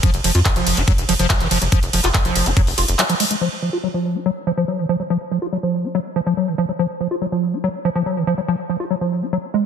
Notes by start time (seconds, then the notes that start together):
0.03 F3, kick, closed hi-hat, ride
0.14 F1, closed hi-hat
0.24 F1 F3, open hi-hat, ride
0.35 F2 F4, closed hi-hat
0.45 F#3, kick, clap, closed hi-hat, ride
0.56 F1 F3, closed hi-hat
0.67 F1, open hi-hat, ride
0.77 F1 F4, closed hi-hat
0.88 F#3, kick, closed hi-hat, ride
0.98 F1, closed hi-hat
1.09 F1 F3, open hi-hat, ride
1.19 F1 F3, closed hi-hat
1.30 kick, clap, closed hi-hat, ride
1.40 F1 D#3, closed hi-hat
1.51 F1 F3, open hi-hat, ride
1.62 F1 F#3, closed hi-hat
1.72 F3, kick, closed hi-hat, ride
1.83 F1, closed hi-hat
1.93 F1 F3, open hi-hat, ride
2.04 F1 F4, clap, closed hi-hat
2.14 F#3, kick, clap, closed hi-hat, ride
2.25 F1 F3, closed hi-hat
2.36 F1, open hi-hat, ride
2.46 F1 F4, closed hi-hat
2.57 F#3, kick, closed hi-hat, ride
2.67 F1, open hi-hat
2.78 F1 F4, open hi-hat, ride
2.88 F1, closed hi-hat
2.99 F#3, clap, closed hi-hat, ride
3.09 F3, closed hi-hat
3.20 G#3, open hi-hat, ride
3.31 G#3, closed hi-hat
3.41 F3
3.62 F3
3.73 F4
3.83 F#3
3.94 F3
4.15 F4
4.26 F#3
4.47 F3
4.57 F3
4.68 F#3
4.79 D#3
4.89 F3
5.00 F#3
5.10 F3
5.31 F3
5.42 F4
5.52 F#3
5.63 F3
5.84 F4
5.95 F#3
6.16 F3
6.26 F3
6.37 F#3
6.48 D#3
6.58 F3
6.69 F#3
6.79 F3
7.00 F3
7.11 F4
7.21 F#3
7.32 F3
7.53 F4
7.64 F#3
7.85 F3
7.95 F3
8.06 F#3
8.17 D#3
8.27 F3
8.38 F#3
8.48 F3
8.69 F3
8.80 F4
8.90 F#3
9.01 F3
9.22 F4
9.33 F#3
9.54 G#3